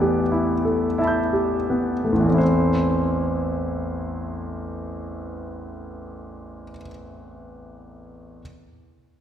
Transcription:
0.00 2.11 A1 soft
0.00 2.17 E2 soft
0.00 2.20 E3 soft
0.00 2.04 A3 soft
0.00 0.20 B3 soft
0.00 0.52 G4 soft
0.00 0.98 D5 medium
0.32 0.85 E4 soft
0.65 1.19 A4 soft
0.98 1.55 E4 soft
0.98 2.36 E5 soft
0.98 2.37 A5 soft
1.04 2.39 B5 soft
1.04 2.40 G6 soft
1.33 1.92 G4 soft
1.70 2.27 B3 soft
2.04 2.24 A3 soft
2.12 6.64 A1 soft
2.17 6.68 E2 soft
2.17 6.72 E3 soft
2.26 6.77 A3 soft
2.30 6.81 C4 soft
2.34 6.86 E4 soft
2.38 6.90 C5 soft

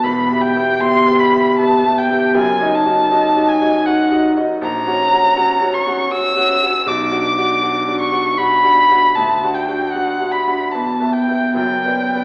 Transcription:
0.03 0.28 E1 medium
0.03 0.29 E2 medium
0.03 0.43 B5 medium
0.30 0.52 B3 soft
0.30 0.52 G4 soft
0.30 0.53 E5 medium
0.42 0.82 G5 medium
0.56 0.78 B3 soft
0.56 0.78 G4 soft
0.56 0.78 E5 medium
0.81 1.04 B3 medium
0.81 1.04 G4 medium
0.81 1.04 E5 medium
0.81 1.21 C6 loud
1.07 1.30 B3 medium
1.07 1.30 G4 soft
1.07 1.30 E5 medium
1.19 1.58 B5 medium
1.32 1.55 B3 soft
1.32 1.56 G4 soft
1.32 1.56 E5 medium
1.58 1.82 B3 medium
1.58 1.82 G4 soft
1.58 1.82 E5 medium
1.58 2.00 A5 medium
1.84 2.07 B3 medium
1.84 2.07 G4 medium
1.84 2.07 E5 medium
1.98 2.36 G5 medium
2.10 2.33 B3 soft
2.10 2.33 G4 soft
2.10 2.33 E5 medium
2.34 2.60 F#1 medium
2.34 2.60 F#2 medium
2.34 2.76 G#5 loud
2.61 2.83 D#4 medium
2.61 2.84 F#4 medium
2.61 2.84 D#5 medium
2.75 3.50 A5 medium
2.85 3.08 D#4 medium
2.85 3.08 F#4 medium
2.85 3.08 D#5 medium
3.11 3.33 D#4 medium
3.11 3.34 F#4 medium
3.11 3.34 D#5 medium
3.36 3.58 D#4 medium
3.36 3.58 F#4 soft
3.36 3.59 D#5 medium
3.48 3.87 G#5 medium
3.61 3.83 D#4 medium
3.61 3.83 F#4 medium
3.61 3.84 D#5 medium
3.86 4.09 D#4 soft
3.86 4.09 F#4 medium
3.86 4.09 D#5 medium
3.86 4.24 F#5 medium
4.11 4.34 D#4 medium
4.11 4.34 F#4 medium
4.11 4.34 D#5 medium
4.37 4.59 D#4 medium
4.37 4.59 F#4 medium
4.37 4.59 D#5 medium
4.61 4.86 A#1 medium
4.61 5.76 A#5 loud
4.87 5.09 C#4 medium
4.87 5.10 F#4 medium
4.87 5.09 F#5 medium
5.11 5.34 C#4 medium
5.11 5.34 F#4 soft
5.11 5.35 F#5 medium
5.36 5.59 C#4 medium
5.36 5.59 F#4 medium
5.36 5.59 F#5 medium
5.61 5.84 C#4 medium
5.61 5.84 F#4 medium
5.61 5.85 F#5 medium
5.74 6.12 C#6 loud
5.87 6.09 C#4 medium
5.87 6.09 F#4 medium
5.87 6.09 F#5 medium
6.11 6.34 C#4 medium
6.11 6.34 F#4 medium
6.11 6.34 F#5 medium
6.11 6.89 E6 loud
6.36 6.59 C#4 medium
6.36 6.59 F#4 medium
6.36 6.59 F#5 medium
6.62 6.84 C#4 medium
6.62 6.85 F#4 soft
6.62 6.85 F#5 medium
6.86 7.11 B1 medium
6.86 7.99 D6 loud
7.11 7.35 D4 medium
7.11 7.34 F#4 medium
7.11 7.35 F#5 medium
7.38 7.60 D4 medium
7.38 7.60 F#4 medium
7.38 7.61 F#5 medium
7.61 7.84 D4 medium
7.61 7.85 F#4 medium
7.61 7.85 F#5 medium
7.88 8.10 D4 medium
7.88 8.10 F#4 soft
7.88 8.10 F#5 medium
8.00 8.39 C#6 medium
8.12 8.35 D4 medium
8.12 8.36 F#4 medium
8.12 8.36 F#5 medium
8.38 8.61 D4 medium
8.38 8.62 F#4 medium
8.38 8.62 F#5 medium
8.38 9.16 B5 loud
8.64 8.87 D4 medium
8.64 8.88 F#4 medium
8.64 8.88 F#5 medium
8.90 9.14 D4 medium
8.90 9.14 F#4 soft
8.90 9.14 F#5 medium
9.15 9.42 D2 medium
9.15 9.56 A5 medium
9.43 9.66 D4 soft
9.43 9.67 F#4 medium
9.43 9.66 F#5 medium
9.54 9.94 G5 medium
9.68 9.91 D4 soft
9.68 9.92 F#4 soft
9.68 9.92 F#5 medium
9.92 10.18 D4 medium
9.92 10.18 F#4 medium
9.92 10.34 F#5 medium
9.92 10.19 F#5 medium
10.20 10.44 D4 soft
10.20 10.45 F#4 soft
10.20 10.45 F#5 soft
10.32 10.73 B5 medium
10.47 10.72 D4 medium
10.47 10.71 F#4 soft
10.47 10.72 F#5 medium
10.72 11.00 E2 medium
10.72 11.14 A5 medium
11.00 11.25 B3 medium
11.00 11.25 B4 medium
11.00 11.26 E5 medium
11.13 11.54 G5 medium
11.28 11.54 B3 soft
11.28 11.54 B4 soft
11.28 11.54 E5 soft
11.54 11.83 F#1 medium
11.54 11.84 F#2 medium
11.54 12.24 G5 medium
11.85 12.11 B3 soft
11.85 12.11 B4 soft
11.85 12.11 D5 medium
12.13 12.24 B3 soft
12.13 12.24 B4 soft
12.13 12.24 D5 soft

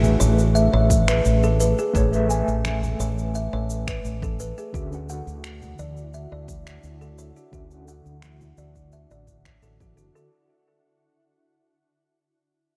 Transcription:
0.00 0.15 A1 medium
0.00 1.89 A3 medium
0.00 4.70 A3 medium
0.00 1.90 G#4 medium
0.00 1.92 B4 medium
0.00 1.93 E5 medium
0.00 low conga medium
0.00 shaker soft
0.20 0.68 A1 medium
0.20 0.36 C#5 medium
0.20 high conga medium
0.20 shaker medium
0.39 shaker soft
0.55 0.71 E5 medium
0.55 shaker soft
0.73 1.20 A1 medium
0.73 0.89 C#5 medium
0.90 kick loud
0.90 high conga medium
0.90 shaker medium
1.08 1.23 B4 medium
1.08 finger snap medium
1.08 shaker soft
1.25 1.72 A1 medium
1.25 shaker soft
1.43 1.52 A4 medium
1.43 shaker soft
1.60 1.76 B4 medium
1.60 shaker medium
1.79 1.87 G#4 medium
1.79 shaker soft
1.94 2.42 A1 medium
1.94 2.08 A3 medium
1.94 2.08 G#4 medium
1.94 2.11 G#4 medium
1.94 2.09 B4 medium
1.94 2.10 C#5 medium
1.94 kick loud
1.94 shaker soft
2.12 2.25 A3 medium
2.12 2.26 G#4 medium
2.12 2.26 B4 medium
2.12 2.27 E5 medium
2.12 shaker soft
2.26 4.68 A3 medium
2.26 4.70 G#5 medium
2.26 shaker medium
2.31 4.71 B4 medium
2.31 4.72 E5 medium
2.31 2.46 G#5 medium
2.48 2.94 A1 medium
2.48 shaker soft
2.65 finger snap medium
2.65 high conga medium
2.65 shaker soft
2.83 low conga medium
2.83 shaker soft
3.00 3.47 A1 medium
3.00 3.16 C#5 medium
3.00 high conga medium
3.00 shaker medium
3.18 shaker soft
3.35 3.51 E5 medium
3.35 shaker soft
3.53 3.99 A1 medium
3.53 3.68 C#5 medium
3.70 shaker medium
3.87 4.03 B4 medium
3.87 finger snap medium
3.87 kick medium
3.87 shaker soft
4.05 4.52 A1 medium
4.05 shaker soft
4.22 4.32 A4 medium
4.22 kick medium
4.22 high conga medium
4.22 shaker soft
4.40 4.56 B4 medium
4.40 shaker medium
4.58 4.67 G#4 medium
4.58 shaker soft
4.73 5.21 D2 medium
4.73 4.87 D3 medium
4.73 10.28 D3 medium
4.73 4.88 C#4 medium
4.73 10.28 E4 medium
4.73 10.28 F#4 medium
4.73 4.90 F#4 medium
4.73 4.88 F#4 medium
4.73 4.89 E5 medium
4.73 kick loud
4.73 shaker soft
4.91 5.04 D3 medium
4.91 5.05 C#4 medium
4.91 5.05 F#4 medium
4.91 shaker soft
4.95 5.06 F#5 medium
5.06 7.47 D3 medium
5.06 5.26 F#5 medium
5.06 shaker medium
5.11 7.50 F#4 medium
5.11 7.51 F#5 medium
5.27 5.73 D2 medium
5.27 shaker soft
5.44 finger snap medium
5.44 shaker soft
5.62 low conga medium
5.62 shaker soft
5.79 6.26 D2 medium
5.79 5.95 D5 medium
5.79 high conga medium
5.79 shaker medium
5.97 shaker soft
6.14 6.30 E5 medium
6.14 shaker soft
6.32 6.78 D2 medium
6.32 6.47 D5 medium
6.48 kick medium
6.48 high conga medium
6.48 shaker medium
6.67 6.82 C#5 medium
6.67 finger snap medium
6.67 shaker soft
6.83 7.31 D2 medium
6.83 shaker soft
7.01 7.10 A4 medium
7.01 shaker soft
7.18 7.35 C#5 medium
7.18 shaker medium
7.36 7.45 F#4 medium
7.36 shaker soft
7.52 8.00 D2 medium
7.52 7.66 D3 medium
7.52 7.67 C#4 medium
7.52 7.69 F#4 medium
7.52 7.67 F#4 medium
7.52 7.68 E5 medium
7.52 kick loud
7.52 shaker soft
7.70 7.83 D3 medium
7.70 7.84 C#4 medium
7.70 7.84 F#4 medium
7.70 7.85 F#5 medium
7.70 shaker soft
7.85 9.92 D3 medium
7.85 8.04 F#5 medium
7.85 shaker medium
7.90 9.95 F#4 medium
7.90 9.96 F#5 medium
8.06 8.52 D2 medium
8.06 shaker soft
8.22 finger snap medium
8.22 high conga medium
8.22 shaker soft
8.41 low conga medium
8.41 shaker soft
8.58 9.05 D2 medium
8.58 8.74 D5 medium
8.58 high conga soft
8.58 shaker medium
8.76 kick soft
8.76 shaker soft
8.92 9.09 E5 medium
8.92 shaker soft
9.10 9.57 A1 medium
9.10 9.26 D5 medium
9.10 shaker soft
9.27 kick medium
9.27 shaker medium
9.45 9.55 C#5 medium
9.45 finger snap medium
9.45 kick medium
9.45 shaker soft
9.62 10.09 A1 medium
9.62 9.72 A4 medium
9.62 shaker soft
9.80 9.96 F#4 medium
9.80 kick medium
9.80 high conga medium
9.80 shaker soft
9.95 10.27 D3 medium
9.95 10.14 F#4 medium
9.95 10.28 F#4 medium
9.95 shaker medium
10.15 10.31 A4 medium
10.15 shaker soft

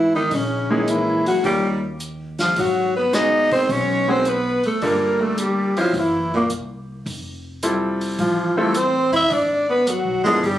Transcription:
0.00 0.28 G#2 medium
0.00 0.15 E3 medium
0.00 0.15 E4 medium
0.15 0.35 D#3 medium
0.15 0.36 D#4 medium
0.31 1.22 A#1 medium
0.31 0.73 C#3 medium
0.31 0.72 C#4 medium
0.31 kick soft
0.31 open hi-hat soft
0.70 0.93 D#3 medium
0.70 1.41 G#3 medium
0.70 1.41 A#3 medium
0.70 1.41 C#4 medium
0.70 0.92 D#4 medium
0.70 1.41 E4 medium
0.70 1.41 G#4 medium
0.88 1.27 E3 medium
0.88 1.27 E4 medium
0.88 closed hi-hat medium
1.26 1.43 F#3 medium
1.26 1.44 F#4 medium
1.26 muted upright bass stroke soft
1.26 open hi-hat soft
1.44 2.53 D#2 medium
1.44 1.81 G3 medium
1.44 1.79 A#3 medium
1.44 1.79 C#4 medium
1.44 1.79 D#4 soft
1.44 1.79 F4 medium
1.44 1.68 G4 medium
1.44 1.80 A#4 medium
1.44 kick soft
1.44 open hi-hat soft
2.00 closed hi-hat soft
2.39 2.60 F3 medium
2.39 2.61 F4 medium
2.39 snare soft
2.39 open hi-hat soft
2.56 3.65 G#1 medium
2.56 2.96 F#3 medium
2.56 2.96 F#4 medium
2.56 kick soft
2.56 open hi-hat soft
2.96 3.18 B3 medium
2.96 3.16 B4 medium
3.13 4.00 G#3 medium
3.13 4.01 B3 medium
3.13 4.01 D#4 medium
3.13 3.53 D#4 medium
3.13 4.01 F#4 medium
3.13 4.01 G#4 medium
3.13 3.52 D#5 loud
3.13 snare soft
3.13 closed hi-hat soft
3.51 3.72 C4 medium
3.51 3.73 C5 medium
3.51 kick medium
3.51 open hi-hat soft
3.69 4.60 B1 medium
3.69 4.11 C#4 medium
3.69 4.13 C#5 medium
3.69 kick soft
3.69 open hi-hat soft
4.08 4.24 G#3 medium
4.08 4.24 B3 medium
4.08 4.29 C4 medium
4.08 4.24 D#4 medium
4.08 4.24 F#4 medium
4.08 4.24 G#4 medium
4.08 4.31 C5 medium
4.25 4.65 B3 medium
4.25 closed hi-hat soft
4.29 4.66 B4 medium
4.64 4.85 A3 medium
4.64 4.86 A4 medium
4.64 muted upright bass stroke soft
4.64 open hi-hat soft
4.82 5.90 G1 medium
4.82 5.69 G3 medium
4.82 5.70 A#3 medium
4.82 5.23 A#3 medium
4.82 5.69 D4 medium
4.82 5.69 F4 medium
4.82 5.70 A4 medium
4.82 5.25 A#4 medium
4.82 kick soft
4.82 open hi-hat soft
5.21 5.40 A3 medium
5.21 5.43 A4 medium
5.38 5.76 G3 medium
5.38 closed hi-hat medium
5.42 5.79 G4 medium
5.77 5.97 F3 medium
5.77 5.93 F#3 medium
5.77 5.93 C4 medium
5.77 5.93 C#4 medium
5.77 5.93 E4 medium
5.77 6.01 F4 medium
5.77 5.93 C5 medium
5.77 open hi-hat soft
5.93 6.46 F#1 medium
5.93 6.33 E3 medium
5.93 kick soft
5.93 open hi-hat soft
6.00 6.36 E4 medium
6.34 6.50 A#2 medium
6.34 6.46 A#3 medium
6.50 7.03 C2 medium
6.50 closed hi-hat soft
7.06 8.15 F1 medium
7.06 kick soft
7.06 open hi-hat soft
7.63 8.50 G3 medium
7.63 8.50 C4 medium
7.63 8.50 E4 medium
7.63 8.50 F4 medium
7.63 8.51 A4 medium
7.63 closed hi-hat medium
8.01 open hi-hat soft
8.19 9.10 A1 medium
8.19 8.59 F3 medium
8.19 8.59 F4 medium
8.19 kick soft
8.19 open hi-hat soft
8.57 8.74 G3 medium
8.57 8.78 A3 medium
8.57 8.74 C4 medium
8.57 8.74 E4 medium
8.57 8.74 F4 medium
8.57 8.79 A4 medium
8.57 8.74 A4 medium
8.74 9.12 C4 medium
8.74 9.15 C5 medium
8.74 closed hi-hat medium
9.11 9.29 D#2 medium
9.11 9.32 E4 medium
9.11 open hi-hat soft
9.16 9.35 E5 loud
9.30 10.02 G#1 medium
9.30 9.69 D4 medium
9.30 9.70 D5 medium
9.30 kick soft
9.30 open hi-hat soft
9.69 9.89 B3 medium
9.69 9.92 B4 medium
9.87 10.23 F#3 medium
9.87 10.26 F#4 medium
9.87 closed hi-hat medium
10.04 10.23 B1 medium
10.24 10.42 F#1 medium
10.24 10.42 F3 medium
10.24 10.44 G#3 medium
10.24 10.42 B3 medium
10.24 10.42 D4 medium
10.24 10.42 E4 medium
10.24 10.47 G#4 medium
10.24 10.42 A4 medium
10.24 open hi-hat soft
10.43 10.59 G1 medium
10.43 10.59 G3 medium
10.43 10.59 G4 medium
10.43 kick soft
10.43 open hi-hat soft

